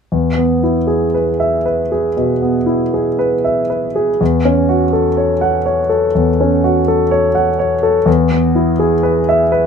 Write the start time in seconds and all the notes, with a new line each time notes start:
0.12 E2
0.37 B3
0.63 E4
0.87 G#4
1.14 B4
1.40 E5
1.65 B4
1.92 G#4
2.17 B2
2.42 B3
2.66 E4
2.94 G#4
3.19 B4
3.44 E5
3.70 B4
3.96 G#4
4.21 E2
4.45 C#4
4.69 F#4
4.93 A4
5.17 C#5
5.41 F#5
5.66 C#5
5.89 A4
6.15 E2
6.41 C#4
6.64 F#4
6.88 A4
7.11 C#5
7.35 F#5
7.59 C#5
7.83 A4
8.06 E2
8.31 B3
8.55 E4
8.79 G#4
9.03 B4
9.29 E5
9.52 B4